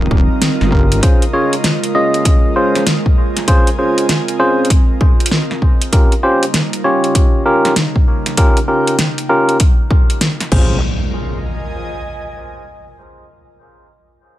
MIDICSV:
0, 0, Header, 1, 7, 480
1, 0, Start_track
1, 0, Tempo, 612245
1, 805, Time_signature, 4, 2, 24, 8
1, 11280, End_track
2, 0, Start_track
2, 0, Title_t, "Analog synth pad"
2, 0, Program_c, 0, 89
2, 0, Note_on_c, 0, 65, 80
2, 0, Note_on_c, 0, 70, 97
2, 0, Note_on_c, 0, 75, 94
2, 0, Note_on_c, 0, 79, 83
2, 805, Note_off_c, 0, 79, 0
2, 2136, Note_on_c, 0, 80, 88
2, 4646, Note_off_c, 0, 80, 0
2, 6388, Note_on_c, 0, 79, 82
2, 8241, Note_off_c, 0, 65, 0
2, 8247, Note_off_c, 0, 70, 0
2, 8247, Note_off_c, 0, 75, 0
2, 8247, Note_off_c, 0, 79, 0
2, 8251, Note_on_c, 0, 65, 83
2, 8342, Note_on_c, 0, 70, 81
2, 8663, Note_on_c, 0, 75, 84
2, 8712, Note_on_c, 0, 80, 82
2, 10137, Note_off_c, 0, 65, 0
2, 10137, Note_off_c, 0, 70, 0
2, 10376, Note_off_c, 0, 80, 0
2, 10378, Note_off_c, 0, 75, 0
2, 11280, End_track
3, 0, Start_track
3, 0, Title_t, "Tine electric piano"
3, 0, Program_c, 1, 4
3, 566, Note_on_c, 1, 65, 68
3, 566, Note_on_c, 1, 67, 69
3, 566, Note_on_c, 1, 70, 83
3, 567, Note_on_c, 1, 61, 69
3, 779, Note_off_c, 1, 65, 0
3, 779, Note_off_c, 1, 67, 0
3, 780, Note_off_c, 1, 61, 0
3, 780, Note_off_c, 1, 70, 0
3, 806, Note_on_c, 1, 61, 79
3, 806, Note_on_c, 1, 65, 73
3, 806, Note_on_c, 1, 68, 72
3, 806, Note_on_c, 1, 72, 90
3, 966, Note_off_c, 1, 61, 0
3, 966, Note_off_c, 1, 65, 0
3, 966, Note_off_c, 1, 68, 0
3, 966, Note_off_c, 1, 72, 0
3, 1046, Note_on_c, 1, 61, 96
3, 1046, Note_on_c, 1, 65, 85
3, 1047, Note_on_c, 1, 68, 86
3, 1047, Note_on_c, 1, 73, 98
3, 1206, Note_off_c, 1, 61, 0
3, 1206, Note_off_c, 1, 65, 0
3, 1206, Note_off_c, 1, 68, 0
3, 1206, Note_off_c, 1, 73, 0
3, 1527, Note_on_c, 1, 75, 101
3, 1528, Note_on_c, 1, 61, 89
3, 1528, Note_on_c, 1, 65, 81
3, 1528, Note_on_c, 1, 68, 80
3, 1985, Note_off_c, 1, 61, 0
3, 1985, Note_off_c, 1, 65, 0
3, 1985, Note_off_c, 1, 75, 0
3, 1986, Note_off_c, 1, 68, 0
3, 2007, Note_on_c, 1, 61, 93
3, 2007, Note_on_c, 1, 65, 85
3, 2007, Note_on_c, 1, 68, 81
3, 2007, Note_on_c, 1, 72, 96
3, 2224, Note_off_c, 1, 61, 0
3, 2224, Note_off_c, 1, 65, 0
3, 2224, Note_off_c, 1, 68, 0
3, 2224, Note_off_c, 1, 72, 0
3, 2727, Note_on_c, 1, 61, 97
3, 2727, Note_on_c, 1, 65, 94
3, 2727, Note_on_c, 1, 68, 88
3, 2727, Note_on_c, 1, 72, 112
3, 2886, Note_off_c, 1, 61, 0
3, 2886, Note_off_c, 1, 65, 0
3, 2886, Note_off_c, 1, 72, 0
3, 2887, Note_off_c, 1, 68, 0
3, 2967, Note_on_c, 1, 61, 84
3, 2967, Note_on_c, 1, 68, 76
3, 2967, Note_on_c, 1, 72, 86
3, 2968, Note_on_c, 1, 65, 75
3, 3184, Note_off_c, 1, 61, 0
3, 3184, Note_off_c, 1, 68, 0
3, 3184, Note_off_c, 1, 72, 0
3, 3185, Note_off_c, 1, 65, 0
3, 3446, Note_on_c, 1, 61, 93
3, 3446, Note_on_c, 1, 65, 93
3, 3446, Note_on_c, 1, 68, 91
3, 3446, Note_on_c, 1, 72, 107
3, 3664, Note_off_c, 1, 61, 0
3, 3664, Note_off_c, 1, 65, 0
3, 3664, Note_off_c, 1, 68, 0
3, 3664, Note_off_c, 1, 72, 0
3, 4645, Note_on_c, 1, 61, 79
3, 4645, Note_on_c, 1, 65, 74
3, 4646, Note_on_c, 1, 67, 76
3, 4646, Note_on_c, 1, 70, 88
3, 4806, Note_off_c, 1, 61, 0
3, 4806, Note_off_c, 1, 65, 0
3, 4806, Note_off_c, 1, 67, 0
3, 4806, Note_off_c, 1, 70, 0
3, 4886, Note_on_c, 1, 61, 98
3, 4886, Note_on_c, 1, 65, 89
3, 4886, Note_on_c, 1, 67, 90
3, 4886, Note_on_c, 1, 72, 105
3, 5046, Note_off_c, 1, 61, 0
3, 5046, Note_off_c, 1, 65, 0
3, 5046, Note_off_c, 1, 67, 0
3, 5046, Note_off_c, 1, 72, 0
3, 5365, Note_on_c, 1, 61, 88
3, 5365, Note_on_c, 1, 65, 86
3, 5365, Note_on_c, 1, 67, 86
3, 5365, Note_on_c, 1, 73, 98
3, 5824, Note_off_c, 1, 61, 0
3, 5824, Note_off_c, 1, 65, 0
3, 5824, Note_off_c, 1, 67, 0
3, 5824, Note_off_c, 1, 73, 0
3, 5845, Note_on_c, 1, 61, 90
3, 5845, Note_on_c, 1, 65, 81
3, 5845, Note_on_c, 1, 67, 84
3, 5845, Note_on_c, 1, 70, 104
3, 6063, Note_off_c, 1, 61, 0
3, 6063, Note_off_c, 1, 65, 0
3, 6063, Note_off_c, 1, 67, 0
3, 6063, Note_off_c, 1, 70, 0
3, 6565, Note_on_c, 1, 61, 97
3, 6565, Note_on_c, 1, 65, 90
3, 6565, Note_on_c, 1, 67, 91
3, 6565, Note_on_c, 1, 70, 107
3, 6725, Note_off_c, 1, 65, 0
3, 6725, Note_off_c, 1, 70, 0
3, 6726, Note_off_c, 1, 61, 0
3, 6726, Note_off_c, 1, 67, 0
3, 6805, Note_on_c, 1, 61, 81
3, 6805, Note_on_c, 1, 65, 75
3, 6805, Note_on_c, 1, 67, 74
3, 6805, Note_on_c, 1, 70, 88
3, 7023, Note_off_c, 1, 61, 0
3, 7023, Note_off_c, 1, 65, 0
3, 7023, Note_off_c, 1, 67, 0
3, 7023, Note_off_c, 1, 70, 0
3, 7285, Note_on_c, 1, 61, 97
3, 7285, Note_on_c, 1, 65, 87
3, 7285, Note_on_c, 1, 67, 88
3, 7285, Note_on_c, 1, 70, 106
3, 7503, Note_off_c, 1, 61, 0
3, 7503, Note_off_c, 1, 65, 0
3, 7503, Note_off_c, 1, 67, 0
3, 7503, Note_off_c, 1, 70, 0
3, 8246, Note_on_c, 1, 65, 78
3, 8246, Note_on_c, 1, 72, 90
3, 8247, Note_on_c, 1, 61, 82
3, 8247, Note_on_c, 1, 68, 76
3, 8436, Note_off_c, 1, 61, 0
3, 8436, Note_off_c, 1, 65, 0
3, 8436, Note_off_c, 1, 68, 0
3, 8436, Note_off_c, 1, 72, 0
3, 11280, End_track
4, 0, Start_track
4, 0, Title_t, "Ambient pad"
4, 0, Program_c, 2, 92
4, 0, Note_on_c, 2, 49, 86
4, 0, Note_on_c, 2, 55, 73
4, 0, Note_on_c, 2, 60, 75
4, 0, Note_on_c, 2, 63, 91
4, 773, Note_off_c, 2, 55, 0
4, 773, Note_off_c, 2, 63, 0
4, 788, Note_off_c, 2, 60, 0
4, 806, Note_on_c, 2, 58, 74
4, 806, Note_on_c, 2, 65, 93
4, 807, Note_on_c, 2, 56, 76
4, 2707, Note_off_c, 2, 58, 0
4, 2725, Note_on_c, 2, 60, 79
4, 4614, Note_off_c, 2, 49, 0
4, 4614, Note_off_c, 2, 65, 0
4, 4615, Note_off_c, 2, 56, 0
4, 4626, Note_off_c, 2, 60, 0
4, 4646, Note_on_c, 2, 49, 82
4, 4646, Note_on_c, 2, 63, 89
4, 4647, Note_on_c, 2, 55, 77
4, 4647, Note_on_c, 2, 58, 78
4, 8214, Note_off_c, 2, 49, 0
4, 8215, Note_off_c, 2, 55, 0
4, 8215, Note_off_c, 2, 58, 0
4, 8215, Note_off_c, 2, 63, 0
4, 8246, Note_on_c, 2, 49, 71
4, 8247, Note_on_c, 2, 65, 77
4, 8248, Note_on_c, 2, 56, 65
4, 8248, Note_on_c, 2, 58, 64
4, 8469, Note_off_c, 2, 49, 0
4, 8469, Note_off_c, 2, 65, 0
4, 8470, Note_off_c, 2, 56, 0
4, 8470, Note_off_c, 2, 58, 0
4, 11280, End_track
5, 0, Start_track
5, 0, Title_t, "Wobble bass"
5, 0, Program_c, 3, 39
5, 86, Note_on_c, 3, 27, 92
5, 214, Note_off_c, 3, 27, 0
5, 478, Note_on_c, 3, 31, 91
5, 792, Note_off_c, 3, 31, 0
5, 8245, Note_on_c, 3, 34, 98
5, 8469, Note_off_c, 3, 34, 0
5, 11280, End_track
6, 0, Start_track
6, 0, Title_t, "Impact"
6, 0, Program_c, 4, 103
6, 8245, Note_on_c, 4, 60, 65
6, 10165, Note_off_c, 4, 60, 0
6, 11280, End_track
7, 0, Start_track
7, 0, Title_t, "Drums"
7, 86, Note_on_c, 9, 36, 103
7, 165, Note_off_c, 9, 36, 0
7, 326, Note_on_c, 9, 38, 121
7, 326, Note_on_c, 9, 42, 77
7, 404, Note_off_c, 9, 38, 0
7, 404, Note_off_c, 9, 42, 0
7, 479, Note_on_c, 9, 40, 36
7, 558, Note_off_c, 9, 40, 0
7, 566, Note_on_c, 9, 36, 62
7, 645, Note_off_c, 9, 36, 0
7, 719, Note_on_c, 9, 42, 50
7, 798, Note_off_c, 9, 42, 0
7, 806, Note_on_c, 9, 36, 120
7, 806, Note_on_c, 9, 42, 71
7, 885, Note_off_c, 9, 36, 0
7, 885, Note_off_c, 9, 42, 0
7, 958, Note_on_c, 9, 42, 34
7, 1037, Note_off_c, 9, 42, 0
7, 1199, Note_on_c, 9, 42, 47
7, 1277, Note_off_c, 9, 42, 0
7, 1286, Note_on_c, 9, 38, 120
7, 1286, Note_on_c, 9, 42, 72
7, 1365, Note_off_c, 9, 38, 0
7, 1365, Note_off_c, 9, 42, 0
7, 1439, Note_on_c, 9, 42, 37
7, 1517, Note_off_c, 9, 42, 0
7, 1679, Note_on_c, 9, 42, 33
7, 1758, Note_off_c, 9, 42, 0
7, 1766, Note_on_c, 9, 36, 110
7, 1767, Note_on_c, 9, 42, 75
7, 1844, Note_off_c, 9, 36, 0
7, 1845, Note_off_c, 9, 42, 0
7, 2160, Note_on_c, 9, 40, 49
7, 2160, Note_on_c, 9, 42, 34
7, 2238, Note_off_c, 9, 40, 0
7, 2238, Note_off_c, 9, 42, 0
7, 2247, Note_on_c, 9, 38, 122
7, 2247, Note_on_c, 9, 42, 76
7, 2325, Note_off_c, 9, 38, 0
7, 2325, Note_off_c, 9, 42, 0
7, 2398, Note_on_c, 9, 36, 63
7, 2476, Note_off_c, 9, 36, 0
7, 2639, Note_on_c, 9, 40, 36
7, 2639, Note_on_c, 9, 42, 49
7, 2717, Note_off_c, 9, 40, 0
7, 2717, Note_off_c, 9, 42, 0
7, 2726, Note_on_c, 9, 36, 108
7, 2727, Note_on_c, 9, 42, 73
7, 2805, Note_off_c, 9, 36, 0
7, 2805, Note_off_c, 9, 42, 0
7, 2879, Note_on_c, 9, 42, 33
7, 2957, Note_off_c, 9, 42, 0
7, 3119, Note_on_c, 9, 42, 46
7, 3197, Note_off_c, 9, 42, 0
7, 3207, Note_on_c, 9, 38, 113
7, 3207, Note_on_c, 9, 42, 75
7, 3285, Note_off_c, 9, 38, 0
7, 3285, Note_off_c, 9, 42, 0
7, 3359, Note_on_c, 9, 42, 36
7, 3437, Note_off_c, 9, 42, 0
7, 3643, Note_on_c, 9, 42, 32
7, 3686, Note_on_c, 9, 36, 106
7, 3687, Note_off_c, 9, 42, 0
7, 3687, Note_on_c, 9, 42, 74
7, 3764, Note_off_c, 9, 36, 0
7, 3765, Note_off_c, 9, 42, 0
7, 3926, Note_on_c, 9, 36, 98
7, 4004, Note_off_c, 9, 36, 0
7, 4079, Note_on_c, 9, 42, 35
7, 4122, Note_off_c, 9, 42, 0
7, 4122, Note_on_c, 9, 42, 71
7, 4166, Note_on_c, 9, 38, 112
7, 4201, Note_off_c, 9, 42, 0
7, 4245, Note_off_c, 9, 38, 0
7, 4319, Note_on_c, 9, 40, 37
7, 4397, Note_off_c, 9, 40, 0
7, 4406, Note_on_c, 9, 36, 58
7, 4484, Note_off_c, 9, 36, 0
7, 4559, Note_on_c, 9, 42, 48
7, 4637, Note_off_c, 9, 42, 0
7, 4646, Note_on_c, 9, 36, 109
7, 4647, Note_on_c, 9, 42, 73
7, 4724, Note_off_c, 9, 36, 0
7, 4725, Note_off_c, 9, 42, 0
7, 4799, Note_on_c, 9, 42, 35
7, 4877, Note_off_c, 9, 42, 0
7, 5039, Note_on_c, 9, 42, 50
7, 5118, Note_off_c, 9, 42, 0
7, 5127, Note_on_c, 9, 38, 111
7, 5127, Note_on_c, 9, 42, 77
7, 5205, Note_off_c, 9, 38, 0
7, 5205, Note_off_c, 9, 42, 0
7, 5278, Note_on_c, 9, 42, 38
7, 5357, Note_off_c, 9, 42, 0
7, 5519, Note_on_c, 9, 42, 33
7, 5597, Note_off_c, 9, 42, 0
7, 5606, Note_on_c, 9, 36, 98
7, 5606, Note_on_c, 9, 42, 75
7, 5684, Note_off_c, 9, 36, 0
7, 5685, Note_off_c, 9, 42, 0
7, 5998, Note_on_c, 9, 40, 55
7, 5998, Note_on_c, 9, 42, 37
7, 6076, Note_off_c, 9, 40, 0
7, 6076, Note_off_c, 9, 42, 0
7, 6086, Note_on_c, 9, 38, 120
7, 6086, Note_on_c, 9, 42, 80
7, 6164, Note_off_c, 9, 38, 0
7, 6164, Note_off_c, 9, 42, 0
7, 6238, Note_on_c, 9, 36, 63
7, 6316, Note_off_c, 9, 36, 0
7, 6477, Note_on_c, 9, 40, 39
7, 6477, Note_on_c, 9, 42, 50
7, 6555, Note_off_c, 9, 40, 0
7, 6555, Note_off_c, 9, 42, 0
7, 6566, Note_on_c, 9, 36, 110
7, 6566, Note_on_c, 9, 42, 82
7, 6644, Note_off_c, 9, 36, 0
7, 6644, Note_off_c, 9, 42, 0
7, 6718, Note_on_c, 9, 42, 37
7, 6796, Note_off_c, 9, 42, 0
7, 6958, Note_on_c, 9, 42, 51
7, 7036, Note_off_c, 9, 42, 0
7, 7045, Note_on_c, 9, 38, 112
7, 7045, Note_on_c, 9, 42, 82
7, 7124, Note_off_c, 9, 38, 0
7, 7124, Note_off_c, 9, 42, 0
7, 7198, Note_on_c, 9, 42, 38
7, 7276, Note_off_c, 9, 42, 0
7, 7438, Note_on_c, 9, 42, 35
7, 7517, Note_off_c, 9, 42, 0
7, 7525, Note_on_c, 9, 42, 81
7, 7526, Note_on_c, 9, 36, 107
7, 7603, Note_off_c, 9, 42, 0
7, 7604, Note_off_c, 9, 36, 0
7, 7766, Note_on_c, 9, 36, 96
7, 7844, Note_off_c, 9, 36, 0
7, 7917, Note_on_c, 9, 42, 36
7, 7996, Note_off_c, 9, 42, 0
7, 8005, Note_on_c, 9, 38, 116
7, 8005, Note_on_c, 9, 42, 78
7, 8084, Note_off_c, 9, 38, 0
7, 8084, Note_off_c, 9, 42, 0
7, 8157, Note_on_c, 9, 40, 37
7, 8157, Note_on_c, 9, 42, 37
7, 8236, Note_off_c, 9, 40, 0
7, 8236, Note_off_c, 9, 42, 0
7, 8245, Note_on_c, 9, 49, 87
7, 8246, Note_on_c, 9, 36, 115
7, 8323, Note_off_c, 9, 49, 0
7, 8324, Note_off_c, 9, 36, 0
7, 11280, End_track
0, 0, End_of_file